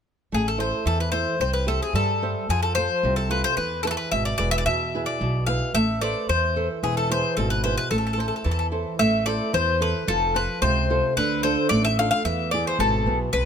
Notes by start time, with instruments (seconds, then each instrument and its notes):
0.32 upright bass A1, nylon-string guitar A3, bouzouki G#4
0.48 bouzouki A4
0.58 nylon-string guitar E4 A4 C5, bouzouki C5
0.85 upright bass E2, nylon-string guitar E3, bouzouki A4
1.00 bouzouki B4
1.12 nylon-string guitar E4 A4 C5, bouzouki C5
1.40 upright bass C2, nylon-string guitar C4, bouzouki C5
1.53 bouzouki B4
1.67 nylon-string guitar G4 C5 E5, bouzouki A4
1.82 bouzouki G#4
1.94 upright bass G2, nylon-string guitar G3, bouzouki A4
2.22 nylon-string guitar G4 C5 E5
2.49 upright bass F2, nylon-string guitar F3, bouzouki G#4
2.63 bouzouki A4
2.75 nylon-string guitar F4 A4 C5, bouzouki C5
3.03 upright bass C2, nylon-string guitar C3
3.16 bouzouki A4
3.29 nylon-string guitar F4 A4 C5, bouzouki B4
3.44 bouzouki C5
3.57 upright bass E2, nylon-string guitar E3, bouzouki B4
3.83 nylon-string guitar E4 G#4 B4, bouzouki A4
3.87 bouzouki A4 B4
3.97 bouzouki B4
4.12 upright bass G#1, nylon-string guitar B2, bouzouki E5
4.25 bouzouki D5
4.38 upright bass E1, nylon-string guitar E4 G#4 B4, bouzouki D5
4.51 bouzouki E5
4.58 bouzouki D5
4.66 upright bass E2, nylon-string guitar B2, bouzouki E5
4.95 nylon-string guitar E4 G#4 B4
5.06 bouzouki D5
5.21 upright bass B1, nylon-string guitar B2
5.47 nylon-string guitar E4 G#4 B4, bouzouki F5
5.74 upright bass A1, nylon-string guitar A3, bouzouki E5
6.01 nylon-string guitar A4 B4 C5, bouzouki D5
6.29 upright bass E2, nylon-string guitar E3, bouzouki C5
6.56 nylon-string guitar A4 B4 C5
6.83 upright bass E1, nylon-string guitar E3, bouzouki G#4
6.97 bouzouki A4
7.10 nylon-string guitar E4 G#4 B4, bouzouki C5
7.37 upright bass G#1, nylon-string guitar B2, bouzouki A4
7.50 bouzouki B4
7.64 nylon-string guitar E4 G#4 B4, bouzouki C5
7.77 bouzouki B4
7.91 upright bass A1, nylon-string guitar A3, bouzouki A4
7.98 bouzouki A4
8.07 bouzouki A4
8.13 bouzouki A4
8.17 nylon-string guitar E4 A4 C5, bouzouki A4
8.28 bouzouki A4
8.36 bouzouki A4
8.44 upright bass E2, nylon-string guitar E3, bouzouki A4
8.51 bouzouki A4
8.59 bouzouki A4
8.72 nylon-string guitar E4 A4 C5
8.99 upright bass A1, nylon-string guitar A3, bouzouki E5
9.26 nylon-string guitar E4 A4 C5, bouzouki D5
9.53 upright bass E2, nylon-string guitar E3, bouzouki C5
9.81 nylon-string guitar E4 A4 C5, bouzouki B4
10.07 upright bass F1, nylon-string guitar F3, bouzouki A4
10.35 nylon-string guitar F4 A4 C5, bouzouki B4
10.62 upright bass C#2, nylon-string guitar C3, bouzouki C5
10.90 nylon-string guitar F4 A4 C5
11.16 upright bass D2, nylon-string guitar D3, bouzouki B4
11.43 nylon-string guitar D4 F4 A4, bouzouki C5
11.69 upright bass A1, nylon-string guitar A3, bouzouki D5
11.85 bouzouki E5
11.99 nylon-string guitar D4 F4 A4, bouzouki F5
12.11 bouzouki F5
12.25 upright bass E2, nylon-string guitar E3, bouzouki E5
12.51 nylon-string guitar B3 E4 G#4, bouzouki D5
12.67 bouzouki C5
12.79 upright bass G#1, nylon-string guitar B2, bouzouki A4
13.06 upright bass B1, nylon-string guitar B3 E4 G#4
13.33 upright bass C2, nylon-string guitar C3, bouzouki B4